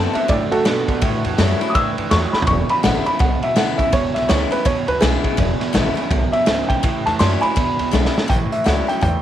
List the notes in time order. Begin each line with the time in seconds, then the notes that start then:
Already playing: D3 A3 B3 C4 F#4 A5
0.13 D3 B3 C4 F#4 E5, muted upright bass stroke, ride
0.28 F#2 A2 D3 A3 D5, kick, ride
0.51 D3 A3 F#4 A4, muted upright bass stroke, ride
0.65 G2 B2 D3 B3, snare, ride
0.88 B1 D3 B3, kick, ride
1.01 A1 A2 E3, kick, ride
1.24 E2 A2 E3, ride
1.38 F#2 A2 E3 F#3 G3 C#4 E4, snare, ride
1.61 A2 F#3 C#4 E4, ride
1.70 D#6
1.75 G2 A2 E3 E6, kick, ride
1.98 G2 A2 E3, ride
2.11 E2 F#2 A2 F#3 C#6, snare, ride
2.33 A2 F#3 B5, muted upright bass stroke, snare
2.42 floor tom
2.47 E1 E2 B2 C#6, kick, ride
2.69 E2 B2 B5, ride
2.83 G#1 E2 C#3 D3 G#3 B3 E4 F#5, snare, ride
3.06 E2 C#3 B3 E4 B5, muted upright bass stroke, ride
3.19 B1 E2 B2 F#5, kick, ride
3.42 E2 B2 E5, muted upright bass stroke, ride
3.56 C#2 E2 C#3 D3 G#3 B3 E4 F#5, snare, ride
3.78 D2 E2 C#3 B3 E4 E5, kick, ride
3.92 E1 E2 B2 C#5, kick, ride
4.14 B1 E2 B2 E5, snare, ride
4.29 C#2 E2 C#3 D3 G#3 B3 E4 C#5, snare, ride
4.51 E2 C#3 B3 E4 B4, ride
4.64 E2 B2 C#5, kick, ride
4.87 D2 E2 B2 B4, ride
5.01 B1 E2 C#3 D3 G#3 B3 E4 G#4, snare, ride
5.24 E2 C#3, kick, ride
5.37 E1 E2 B2, kick, ride
5.60 E2 B2, muted upright bass stroke, snare, ride
5.73 G#1 E2 C#3 D3 G#3 B3 E4, snare, ride
5.95 E2 C#3 B3 E4, muted upright bass stroke, ride
6.10 B1 E2 F#2 B2, kick, ride
6.32 E2 B2 E5, ride
6.46 C#2 E2 G#2 C#3, snare, ride
6.69 B1 E2 C#3 G5, kick, ride
6.83 A1 A2 E3, kick, ride
7.06 E2 A2 E3 A5, snare, ride
7.19 F#2 A2 E3 F#3 G3 C#4 E4 C6, snare, ride
7.41 A2 F#3 C#4 E4 G#5 B5, muted upright bass stroke, ride
7.56 E1 E2 B2, kick, ride
7.79 D2 E2 B2, ride
7.91 B1 E2 C#3 D3 G#3 B3 E4, snare
8.05 snare
8.14 E2 C#3 B3 E4, snare
8.28 A1 A2 E3 G5, kick, closed hi-hat
8.52 A2 E3 E5, muted upright bass stroke, closed hi-hat
8.64 C#2 A2 E3 F#3 G3 C#4 E4 F#5, snare, closed hi-hat
8.87 A2 F#3 C#4 E4 G5, closed hi-hat
9.01 E2 A2 E3 G5, kick, closed hi-hat